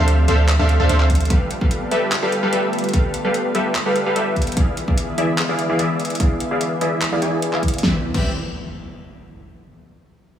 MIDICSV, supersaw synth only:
0, 0, Header, 1, 2, 480
1, 0, Start_track
1, 0, Key_signature, 0, "major"
1, 0, Tempo, 408163
1, 1531, Time_signature, 4, 2, 24, 8
1, 12220, End_track
2, 0, Start_track
2, 0, Title_t, "Supersaw synth"
2, 0, Program_c, 0, 81
2, 0, Note_on_c, 0, 62, 69
2, 0, Note_on_c, 0, 69, 64
2, 0, Note_on_c, 0, 72, 66
2, 0, Note_on_c, 0, 76, 68
2, 0, Note_on_c, 0, 77, 82
2, 303, Note_off_c, 0, 77, 0
2, 304, Note_off_c, 0, 62, 0
2, 304, Note_off_c, 0, 69, 0
2, 304, Note_off_c, 0, 72, 0
2, 304, Note_off_c, 0, 76, 0
2, 330, Note_on_c, 0, 69, 81
2, 330, Note_on_c, 0, 72, 86
2, 330, Note_on_c, 0, 76, 82
2, 331, Note_on_c, 0, 62, 92
2, 331, Note_on_c, 0, 77, 99
2, 586, Note_off_c, 0, 62, 0
2, 586, Note_off_c, 0, 69, 0
2, 586, Note_off_c, 0, 72, 0
2, 586, Note_off_c, 0, 76, 0
2, 586, Note_off_c, 0, 77, 0
2, 697, Note_on_c, 0, 77, 105
2, 698, Note_on_c, 0, 62, 93
2, 698, Note_on_c, 0, 69, 81
2, 698, Note_on_c, 0, 72, 85
2, 698, Note_on_c, 0, 76, 86
2, 907, Note_off_c, 0, 62, 0
2, 907, Note_off_c, 0, 69, 0
2, 907, Note_off_c, 0, 72, 0
2, 907, Note_off_c, 0, 76, 0
2, 907, Note_off_c, 0, 77, 0
2, 938, Note_on_c, 0, 62, 98
2, 938, Note_on_c, 0, 69, 85
2, 938, Note_on_c, 0, 72, 90
2, 938, Note_on_c, 0, 77, 102
2, 939, Note_on_c, 0, 76, 83
2, 1035, Note_off_c, 0, 62, 0
2, 1035, Note_off_c, 0, 69, 0
2, 1035, Note_off_c, 0, 72, 0
2, 1035, Note_off_c, 0, 76, 0
2, 1035, Note_off_c, 0, 77, 0
2, 1051, Note_on_c, 0, 76, 84
2, 1052, Note_on_c, 0, 62, 90
2, 1052, Note_on_c, 0, 69, 83
2, 1052, Note_on_c, 0, 72, 84
2, 1052, Note_on_c, 0, 77, 101
2, 1504, Note_off_c, 0, 62, 0
2, 1504, Note_off_c, 0, 69, 0
2, 1504, Note_off_c, 0, 72, 0
2, 1504, Note_off_c, 0, 76, 0
2, 1504, Note_off_c, 0, 77, 0
2, 1531, Note_on_c, 0, 55, 91
2, 1531, Note_on_c, 0, 67, 83
2, 1531, Note_on_c, 0, 69, 81
2, 1531, Note_on_c, 0, 71, 85
2, 1531, Note_on_c, 0, 77, 102
2, 1786, Note_off_c, 0, 55, 0
2, 1786, Note_off_c, 0, 67, 0
2, 1786, Note_off_c, 0, 69, 0
2, 1786, Note_off_c, 0, 71, 0
2, 1786, Note_off_c, 0, 77, 0
2, 1896, Note_on_c, 0, 55, 74
2, 1897, Note_on_c, 0, 67, 68
2, 1897, Note_on_c, 0, 69, 69
2, 1897, Note_on_c, 0, 71, 68
2, 1897, Note_on_c, 0, 77, 79
2, 2223, Note_off_c, 0, 55, 0
2, 2224, Note_off_c, 0, 67, 0
2, 2224, Note_off_c, 0, 69, 0
2, 2224, Note_off_c, 0, 71, 0
2, 2224, Note_off_c, 0, 77, 0
2, 2252, Note_on_c, 0, 55, 89
2, 2252, Note_on_c, 0, 67, 84
2, 2252, Note_on_c, 0, 69, 86
2, 2252, Note_on_c, 0, 71, 83
2, 2252, Note_on_c, 0, 76, 97
2, 2506, Note_off_c, 0, 76, 0
2, 2507, Note_off_c, 0, 55, 0
2, 2507, Note_off_c, 0, 67, 0
2, 2507, Note_off_c, 0, 69, 0
2, 2507, Note_off_c, 0, 71, 0
2, 2617, Note_on_c, 0, 71, 85
2, 2617, Note_on_c, 0, 77, 105
2, 2618, Note_on_c, 0, 55, 94
2, 2618, Note_on_c, 0, 67, 90
2, 2618, Note_on_c, 0, 69, 89
2, 2827, Note_off_c, 0, 55, 0
2, 2827, Note_off_c, 0, 67, 0
2, 2827, Note_off_c, 0, 69, 0
2, 2827, Note_off_c, 0, 71, 0
2, 2827, Note_off_c, 0, 77, 0
2, 2857, Note_on_c, 0, 55, 93
2, 2857, Note_on_c, 0, 67, 85
2, 2857, Note_on_c, 0, 69, 85
2, 2857, Note_on_c, 0, 77, 102
2, 2858, Note_on_c, 0, 71, 91
2, 2954, Note_off_c, 0, 55, 0
2, 2954, Note_off_c, 0, 67, 0
2, 2954, Note_off_c, 0, 69, 0
2, 2954, Note_off_c, 0, 71, 0
2, 2954, Note_off_c, 0, 77, 0
2, 2972, Note_on_c, 0, 69, 79
2, 2972, Note_on_c, 0, 76, 100
2, 2973, Note_on_c, 0, 55, 91
2, 2973, Note_on_c, 0, 67, 83
2, 2973, Note_on_c, 0, 71, 78
2, 3424, Note_off_c, 0, 69, 0
2, 3424, Note_off_c, 0, 76, 0
2, 3425, Note_off_c, 0, 55, 0
2, 3425, Note_off_c, 0, 67, 0
2, 3425, Note_off_c, 0, 71, 0
2, 3451, Note_on_c, 0, 55, 93
2, 3451, Note_on_c, 0, 69, 88
2, 3451, Note_on_c, 0, 71, 84
2, 3451, Note_on_c, 0, 77, 98
2, 3452, Note_on_c, 0, 67, 83
2, 3706, Note_off_c, 0, 55, 0
2, 3706, Note_off_c, 0, 69, 0
2, 3706, Note_off_c, 0, 71, 0
2, 3706, Note_off_c, 0, 77, 0
2, 3707, Note_off_c, 0, 67, 0
2, 3817, Note_on_c, 0, 77, 82
2, 3818, Note_on_c, 0, 55, 77
2, 3818, Note_on_c, 0, 67, 68
2, 3818, Note_on_c, 0, 69, 65
2, 3818, Note_on_c, 0, 71, 70
2, 4144, Note_off_c, 0, 55, 0
2, 4144, Note_off_c, 0, 67, 0
2, 4144, Note_off_c, 0, 69, 0
2, 4144, Note_off_c, 0, 71, 0
2, 4144, Note_off_c, 0, 77, 0
2, 4172, Note_on_c, 0, 55, 89
2, 4172, Note_on_c, 0, 67, 83
2, 4172, Note_on_c, 0, 69, 81
2, 4173, Note_on_c, 0, 71, 84
2, 4173, Note_on_c, 0, 76, 94
2, 4427, Note_off_c, 0, 55, 0
2, 4427, Note_off_c, 0, 67, 0
2, 4427, Note_off_c, 0, 69, 0
2, 4427, Note_off_c, 0, 71, 0
2, 4427, Note_off_c, 0, 76, 0
2, 4538, Note_on_c, 0, 55, 92
2, 4538, Note_on_c, 0, 67, 87
2, 4538, Note_on_c, 0, 69, 82
2, 4538, Note_on_c, 0, 71, 91
2, 4538, Note_on_c, 0, 77, 102
2, 4747, Note_off_c, 0, 55, 0
2, 4747, Note_off_c, 0, 67, 0
2, 4747, Note_off_c, 0, 69, 0
2, 4747, Note_off_c, 0, 77, 0
2, 4748, Note_off_c, 0, 71, 0
2, 4779, Note_on_c, 0, 55, 95
2, 4779, Note_on_c, 0, 67, 86
2, 4779, Note_on_c, 0, 69, 84
2, 4779, Note_on_c, 0, 71, 87
2, 4779, Note_on_c, 0, 77, 107
2, 4875, Note_off_c, 0, 55, 0
2, 4875, Note_off_c, 0, 67, 0
2, 4875, Note_off_c, 0, 69, 0
2, 4875, Note_off_c, 0, 71, 0
2, 4875, Note_off_c, 0, 77, 0
2, 4893, Note_on_c, 0, 55, 90
2, 4893, Note_on_c, 0, 67, 84
2, 4893, Note_on_c, 0, 69, 81
2, 4893, Note_on_c, 0, 71, 82
2, 4893, Note_on_c, 0, 76, 98
2, 5345, Note_off_c, 0, 55, 0
2, 5345, Note_off_c, 0, 67, 0
2, 5345, Note_off_c, 0, 69, 0
2, 5345, Note_off_c, 0, 71, 0
2, 5345, Note_off_c, 0, 76, 0
2, 5371, Note_on_c, 0, 68, 89
2, 5371, Note_on_c, 0, 74, 82
2, 5371, Note_on_c, 0, 77, 102
2, 5372, Note_on_c, 0, 52, 92
2, 5372, Note_on_c, 0, 64, 85
2, 5626, Note_off_c, 0, 52, 0
2, 5626, Note_off_c, 0, 68, 0
2, 5626, Note_off_c, 0, 74, 0
2, 5626, Note_off_c, 0, 77, 0
2, 5627, Note_off_c, 0, 64, 0
2, 5737, Note_on_c, 0, 52, 73
2, 5737, Note_on_c, 0, 64, 69
2, 5737, Note_on_c, 0, 68, 68
2, 5737, Note_on_c, 0, 74, 71
2, 5737, Note_on_c, 0, 77, 79
2, 6064, Note_off_c, 0, 52, 0
2, 6064, Note_off_c, 0, 64, 0
2, 6064, Note_off_c, 0, 68, 0
2, 6064, Note_off_c, 0, 74, 0
2, 6064, Note_off_c, 0, 77, 0
2, 6091, Note_on_c, 0, 52, 90
2, 6091, Note_on_c, 0, 64, 81
2, 6091, Note_on_c, 0, 68, 81
2, 6091, Note_on_c, 0, 74, 85
2, 6091, Note_on_c, 0, 76, 95
2, 6346, Note_off_c, 0, 52, 0
2, 6346, Note_off_c, 0, 64, 0
2, 6346, Note_off_c, 0, 68, 0
2, 6346, Note_off_c, 0, 74, 0
2, 6346, Note_off_c, 0, 76, 0
2, 6456, Note_on_c, 0, 52, 94
2, 6456, Note_on_c, 0, 64, 89
2, 6456, Note_on_c, 0, 68, 86
2, 6456, Note_on_c, 0, 77, 101
2, 6457, Note_on_c, 0, 74, 89
2, 6666, Note_off_c, 0, 64, 0
2, 6667, Note_off_c, 0, 52, 0
2, 6667, Note_off_c, 0, 68, 0
2, 6667, Note_off_c, 0, 74, 0
2, 6667, Note_off_c, 0, 77, 0
2, 6697, Note_on_c, 0, 52, 98
2, 6697, Note_on_c, 0, 68, 91
2, 6697, Note_on_c, 0, 74, 89
2, 6697, Note_on_c, 0, 77, 103
2, 6698, Note_on_c, 0, 64, 90
2, 6794, Note_off_c, 0, 52, 0
2, 6794, Note_off_c, 0, 64, 0
2, 6794, Note_off_c, 0, 68, 0
2, 6794, Note_off_c, 0, 74, 0
2, 6794, Note_off_c, 0, 77, 0
2, 6812, Note_on_c, 0, 52, 90
2, 6812, Note_on_c, 0, 68, 84
2, 6812, Note_on_c, 0, 74, 84
2, 6812, Note_on_c, 0, 76, 95
2, 6813, Note_on_c, 0, 64, 82
2, 7264, Note_off_c, 0, 52, 0
2, 7264, Note_off_c, 0, 68, 0
2, 7264, Note_off_c, 0, 74, 0
2, 7265, Note_off_c, 0, 64, 0
2, 7265, Note_off_c, 0, 76, 0
2, 7291, Note_on_c, 0, 74, 89
2, 7292, Note_on_c, 0, 52, 91
2, 7292, Note_on_c, 0, 64, 83
2, 7292, Note_on_c, 0, 68, 86
2, 7292, Note_on_c, 0, 77, 99
2, 7546, Note_off_c, 0, 74, 0
2, 7547, Note_off_c, 0, 52, 0
2, 7547, Note_off_c, 0, 64, 0
2, 7547, Note_off_c, 0, 68, 0
2, 7547, Note_off_c, 0, 77, 0
2, 7657, Note_on_c, 0, 68, 69
2, 7657, Note_on_c, 0, 74, 66
2, 7658, Note_on_c, 0, 52, 77
2, 7658, Note_on_c, 0, 64, 69
2, 7658, Note_on_c, 0, 77, 86
2, 7984, Note_off_c, 0, 52, 0
2, 7984, Note_off_c, 0, 64, 0
2, 7984, Note_off_c, 0, 68, 0
2, 7984, Note_off_c, 0, 74, 0
2, 7984, Note_off_c, 0, 77, 0
2, 8012, Note_on_c, 0, 52, 92
2, 8012, Note_on_c, 0, 64, 83
2, 8012, Note_on_c, 0, 68, 84
2, 8012, Note_on_c, 0, 74, 84
2, 8012, Note_on_c, 0, 76, 103
2, 8266, Note_off_c, 0, 74, 0
2, 8267, Note_off_c, 0, 52, 0
2, 8267, Note_off_c, 0, 64, 0
2, 8267, Note_off_c, 0, 68, 0
2, 8267, Note_off_c, 0, 76, 0
2, 8378, Note_on_c, 0, 52, 100
2, 8378, Note_on_c, 0, 64, 86
2, 8378, Note_on_c, 0, 68, 83
2, 8378, Note_on_c, 0, 77, 104
2, 8379, Note_on_c, 0, 74, 84
2, 8469, Note_off_c, 0, 52, 0
2, 8469, Note_off_c, 0, 64, 0
2, 8469, Note_off_c, 0, 68, 0
2, 8469, Note_off_c, 0, 74, 0
2, 8469, Note_off_c, 0, 77, 0
2, 8491, Note_on_c, 0, 52, 94
2, 8491, Note_on_c, 0, 64, 87
2, 8491, Note_on_c, 0, 68, 90
2, 8491, Note_on_c, 0, 74, 87
2, 8491, Note_on_c, 0, 80, 111
2, 8827, Note_off_c, 0, 52, 0
2, 8827, Note_off_c, 0, 64, 0
2, 8827, Note_off_c, 0, 68, 0
2, 8827, Note_off_c, 0, 74, 0
2, 8827, Note_off_c, 0, 80, 0
2, 8857, Note_on_c, 0, 64, 72
2, 8857, Note_on_c, 0, 77, 84
2, 8858, Note_on_c, 0, 52, 75
2, 8858, Note_on_c, 0, 68, 69
2, 8858, Note_on_c, 0, 74, 71
2, 9184, Note_off_c, 0, 52, 0
2, 9184, Note_off_c, 0, 64, 0
2, 9184, Note_off_c, 0, 68, 0
2, 9184, Note_off_c, 0, 74, 0
2, 9184, Note_off_c, 0, 77, 0
2, 9211, Note_on_c, 0, 60, 88
2, 9211, Note_on_c, 0, 67, 80
2, 9211, Note_on_c, 0, 71, 80
2, 9211, Note_on_c, 0, 74, 78
2, 9212, Note_on_c, 0, 76, 95
2, 9349, Note_off_c, 0, 71, 0
2, 9349, Note_off_c, 0, 74, 0
2, 9350, Note_off_c, 0, 60, 0
2, 9350, Note_off_c, 0, 67, 0
2, 9350, Note_off_c, 0, 76, 0
2, 9579, Note_on_c, 0, 60, 87
2, 9579, Note_on_c, 0, 67, 82
2, 9579, Note_on_c, 0, 71, 81
2, 9579, Note_on_c, 0, 74, 75
2, 9579, Note_on_c, 0, 76, 89
2, 9754, Note_off_c, 0, 60, 0
2, 9754, Note_off_c, 0, 71, 0
2, 9754, Note_off_c, 0, 74, 0
2, 9754, Note_off_c, 0, 76, 0
2, 9755, Note_off_c, 0, 67, 0
2, 12220, End_track
0, 0, End_of_file